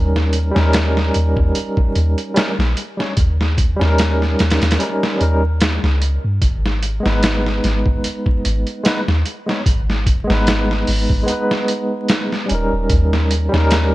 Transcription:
Already playing: 808-style bass D#2, tine electric piano G3 C#4 D#4 A#4
0.16 snare
0.33 closed hi-hat
0.51 tine electric piano G3 C#4
0.56 808-style bass D#2, tine electric piano D#4, snare
0.60 tine electric piano A#4
0.73 snare, closed hi-hat
0.97 snare
1.14 808-style bass D#2, closed hi-hat
1.37 808-style bass D#2, kick
1.55 closed hi-hat
1.77 kick
1.95 808-style bass D#2, closed hi-hat
2.18 closed hi-hat
2.34 tine electric piano G3 C#4 D#4, snare, closed hi-hat
2.39 tine electric piano A#4
2.59 808-style bass A#1, snare
2.77 closed hi-hat
2.97 tine electric piano G3 C#4 D#4, snare
3.02 tine electric piano C#5
3.17 808-style bass D#2, kick, closed hi-hat
3.41 snare
3.58 kick, closed hi-hat
3.76 tine electric piano G3 C#4
3.81 808-style bass D#2, tine electric piano D#4, snare
3.86 tine electric piano A#4
3.98 snare, closed hi-hat
4.22 snare
4.39 808-style bass D#2, snare, closed hi-hat
4.50 snare, closed hi-hat
4.62 808-style bass D#2, snare, closed hi-hat
4.71 snare, closed hi-hat
4.78 tine electric piano G3 C#4 D#4, closed hi-hat
4.83 tine electric piano A#4
5.03 snare
5.17 808-style bass D#2, tine electric piano G3 C#4 D#4, closed hi-hat
5.22 tine electric piano A#4
5.61 snare, closed hi-hat
5.83 808-style bass C#2, snare
6.02 closed hi-hat
6.24 808-style bass G2
6.42 808-style bass G#1, kick, closed hi-hat
6.66 snare
6.83 closed hi-hat
7.00 tine electric piano G#3 B3
7.06 808-style bass G#1, tine electric piano D#4 B4, snare
7.23 snare, closed hi-hat
7.47 snare
7.64 808-style bass G#1, snare, closed hi-hat
7.86 808-style bass G#1, kick
8.04 closed hi-hat
8.26 kick
8.45 808-style bass G#1, closed hi-hat
8.67 closed hi-hat
8.84 tine electric piano G#3 B3 D#4, snare, closed hi-hat
8.88 tine electric piano B4
9.08 808-style bass D#2, snare
9.26 closed hi-hat
9.46 tine electric piano G#3 B3 D#4, snare
9.51 tine electric piano C#5
9.66 808-style bass G#1, kick, closed hi-hat
9.90 snare
10.06 kick, closed hi-hat
10.24 tine electric piano G#3 B3
10.30 808-style bass G#1, tine electric piano D#4, snare
10.34 tine electric piano B4
10.47 snare, closed hi-hat
10.71 snare
10.87 808-style bass G#1, open hi-hat
11.10 808-style bass G#1, kick
11.23 tine electric piano G#3 B3
11.28 tine electric piano D#4, closed hi-hat
11.32 tine electric piano B4
11.51 snare
11.68 closed hi-hat
12.08 snare, closed hi-hat
12.32 snare
12.46 tine electric piano G3 C#4, closed hi-hat
12.51 808-style bass D#1, tine electric piano D#4 A#4
12.73 808-style bass D#1
12.90 808-style bass D#2, kick, closed hi-hat
13.13 snare
13.31 closed hi-hat
13.49 tine electric piano G3 C#4
13.53 808-style bass D#2, tine electric piano D#4, snare
13.58 tine electric piano A#4
13.71 snare, closed hi-hat

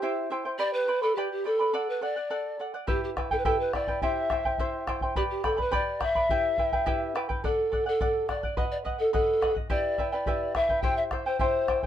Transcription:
Already playing: pan flute G4
0.02 charango E4 G4 C5 E5 G5
0.30 charango E4 C5 E5 G5
0.45 charango E4 C5 G5
0.59 charango G4 B4 D5 G5 B5, pan flute D5
0.73 pan flute B4
0.87 charango B4 D5 G5 B5
1.02 pan flute A4, charango B4 D5 B5
1.15 pan flute G4, charango G4 B4 D5 G5 B5
1.32 pan flute G4
1.44 pan flute A4, charango B4 D5 G5 B5
1.59 charango B4 D5 B5
1.73 charango A4 D5 F#5
1.89 pan flute B4
2.01 charango A4 D5 F#5, pan flute D5
2.16 charango D5 F#5
2.30 charango A4 D5 F#5
2.59 charango A4 D5 F#5
2.74 charango D5 F#5
2.87 charango E4 G4 B4 E5 G5, pan flute G4, bombo low
3.04 pan flute G4
3.16 charango E4 B4 E5 G5, bombo rim, bombo low
3.31 charango E4 B4 G5, pan flute A4, bombo low
3.38 pan flute B4
3.45 charango E4 G4 B4 E5 G5, pan flute A4, bombo low
3.60 pan flute B4
3.73 charango E4 B4 E5 G5, pan flute D5, bombo rim, bombo low
3.87 charango E4 B4 G5, bombo low
4.02 charango E4 G4 C5 E5 G5, pan flute E5, bombo low
4.30 charango E4 C5 E5 G5, bombo rim, bombo low
4.45 charango E4 C5 G5, bombo low
4.58 charango E4 G4 C5 E5 G5, bombo low
4.87 charango E4 C5 E5 G5, bombo rim, bombo low
5.01 charango E4 C5 G5, bombo low
5.16 charango G4 B4 D5 G5 B5, pan flute G4, bombo low
5.31 pan flute G4
5.44 pan flute A4, charango B4 D5 G5 B5, bombo rim, bombo low
5.57 charango B4 D5 B5, pan flute B4, bombo low
5.71 charango G4 B4 D5 G5 B5, pan flute D5, bombo low
6.00 charango B4 D5 G5 B5, pan flute E5, bombo rim, bombo low
6.15 charango B4 D5 B5, bombo low
6.29 charango E4 G4 B4 E5 G5, bombo low
6.58 charango E4 B4 E5 G5, bombo low
6.72 charango E4 B4 G5, bombo low
6.86 charango E4 G4 B4 E5 G5, bombo low
7.15 charango E4 B4 E5 G5, bombo rim
7.29 charango E4 B4 G5, bombo low
7.44 charango A4 D5 F#5, pan flute A4, bombo low
7.72 charango A4 D5 F#5, bombo low
7.86 pan flute A4, charango D5 F#5
8.01 charango A4 D5 F#5, bombo low
8.28 charango A4 D5 F#5, pan flute D5, bombo rim, bombo low
8.43 charango D5 F#5, bombo low
8.57 charango B4 D#5 F#5, pan flute D#5, bombo low
8.71 pan flute D5
8.85 charango B4 D#5 F#5, bombo low
8.98 pan flute A4, charango D#5 F#5
9.13 pan flute A4, charango B4 D#5 F#5, bombo low
9.41 charango B4 D#5 F#5, bombo rim, bombo low
9.55 charango D#5 F#5, bombo low
9.70 charango E4 G4 B4 E5 G5, pan flute D5, bombo low
9.98 charango E4 B4 E5 G5, bombo low
10.12 charango E4 B4 G5, pan flute D5
10.26 charango E4 G4 B4 E5 G5, bombo low
10.55 charango E4 B4 E5 G5, pan flute E5, bombo rim, bombo low
10.69 charango E4 B4 G5, bombo low
10.82 charango E4 G4 C5 E5 G5, pan flute G5, bombo low
10.97 pan flute E5
11.11 charango E4 C5 E5 G5, bombo rim, bombo low
11.26 charango E4 C5 G5, pan flute C5
11.39 charango E4 G4 C5 E5 G5, pan flute C5, bombo low
11.68 charango E4 C5 E5 G5, bombo rim, bombo low
11.83 charango G5, bombo low

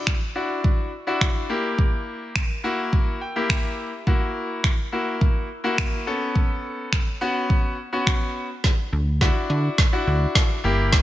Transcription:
Already playing: grand piano D4 E4 F#4
0.07 finger snap, kick
0.35 grand piano D4 E4 F#4
0.64 kick
1.07 grand piano D4 E4 F#4
1.21 finger snap, kick
1.49 grand piano A#3 E4 G4
1.78 kick
2.36 finger snap, kick
2.64 grand piano A#3 E4 F#4
2.93 kick
3.21 grand piano G5
3.36 grand piano A#3 E4 G4
3.50 finger snap, kick
4.07 grand piano A#3 E4 F#4, kick
4.64 finger snap, kick
4.92 grand piano A#3 E4 F#4
5.21 kick
5.64 grand piano A#3 E4 F#4
5.78 finger snap, kick
6.07 grand piano B3 C#4 A4
6.35 kick
6.93 finger snap, kick
7.21 grand piano B3 C#4 F#4
7.50 kick
7.93 grand piano B3 C#4 F#4
8.07 finger snap, kick
8.64 kick, snare
8.93 analog synth bass D2
9.21 grand piano D4 E4 F#4, kick, snare
9.50 analog synth bass D3
9.78 kick, snare
9.92 grand piano D4 E4 F#4
10.07 analog synth bass D2
10.35 kick, snare
10.64 analog synth bass G1, grand piano A#3 E4 G4
10.93 kick, snare, closed hi-hat

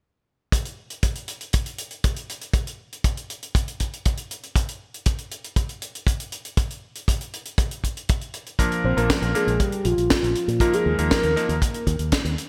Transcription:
0.52 kick, closed hi-hat
0.65 closed hi-hat
0.90 closed hi-hat
1.03 kick, closed hi-hat
1.15 closed hi-hat
1.28 closed hi-hat
1.41 closed hi-hat
1.53 kick, closed hi-hat
1.66 closed hi-hat
1.78 closed hi-hat
1.91 closed hi-hat
2.04 kick, closed hi-hat
2.16 closed hi-hat
2.29 closed hi-hat
2.41 closed hi-hat
2.53 kick, closed hi-hat
2.67 closed hi-hat
2.92 closed hi-hat
3.04 kick, closed hi-hat
3.17 closed hi-hat
3.30 closed hi-hat
3.43 closed hi-hat
3.55 kick, closed hi-hat
3.68 closed hi-hat
3.80 kick, closed hi-hat
3.93 closed hi-hat
4.05 kick, closed hi-hat
4.17 closed hi-hat
4.31 closed hi-hat
4.43 closed hi-hat
4.56 kick, closed hi-hat
4.68 closed hi-hat
4.94 closed hi-hat
5.06 kick, closed hi-hat
5.18 closed hi-hat
5.31 closed hi-hat
5.44 closed hi-hat
5.56 kick, closed hi-hat
5.69 closed hi-hat
5.82 closed hi-hat
5.95 closed hi-hat
6.07 kick, closed hi-hat
6.20 closed hi-hat
6.32 closed hi-hat
6.45 closed hi-hat
6.57 kick, closed hi-hat
6.70 closed hi-hat
6.95 closed hi-hat
7.08 kick, closed hi-hat
7.21 closed hi-hat
7.33 closed hi-hat
7.45 closed hi-hat
7.58 kick, closed hi-hat
7.71 closed hi-hat
7.84 kick, closed hi-hat
7.97 closed hi-hat
8.09 kick, closed hi-hat
8.21 closed hi-hat
8.34 closed hi-hat
8.46 closed hi-hat
8.59 electric grand piano F3 A#3 D4 A#4, kick, closed hi-hat
8.72 closed hi-hat
8.84 fingered electric bass A#1, soft synth lead C5
8.97 fingered electric bass A#1, electric grand piano F3 A#3 D4 A#4, soft synth lead A#4, closed hi-hat
9.10 kick, snare, closed hi-hat
9.22 fingered electric bass A#1, closed hi-hat
9.35 electric grand piano F3 A#3 D4 A#4, soft synth lead G#4, closed hi-hat
9.47 fingered electric bass A#1, closed hi-hat
9.60 soft synth lead G4, kick, closed hi-hat
9.72 closed hi-hat
9.85 fingered electric bass A#1, soft synth lead F4, closed hi-hat
9.98 fingered electric bass A#1, closed hi-hat
10.10 kick, snare, closed hi-hat
10.23 fingered electric bass A#1, closed hi-hat
10.35 closed hi-hat
10.48 fingered electric bass A#2, closed hi-hat
10.60 electric grand piano F3 A#3 D#4 A#4, soft synth lead F4, kick, closed hi-hat
10.73 soft synth lead G#4, closed hi-hat
10.86 fingered electric bass D#2
10.98 fingered electric bass D#2, electric grand piano F3 A#3 D#4 A#4, closed hi-hat
11.11 soft synth lead A#4, kick, snare, closed hi-hat
11.23 fingered electric bass D#2, closed hi-hat
11.36 electric grand piano F3 A#3 D#4 A#4, closed hi-hat
11.49 fingered electric bass D#2, closed hi-hat
11.62 kick, closed hi-hat
11.74 closed hi-hat
11.87 fingered electric bass D#2, kick, closed hi-hat
11.99 fingered electric bass D#2, closed hi-hat
12.12 kick, snare, closed hi-hat
12.25 fingered electric bass D#2, closed hi-hat
12.38 closed hi-hat

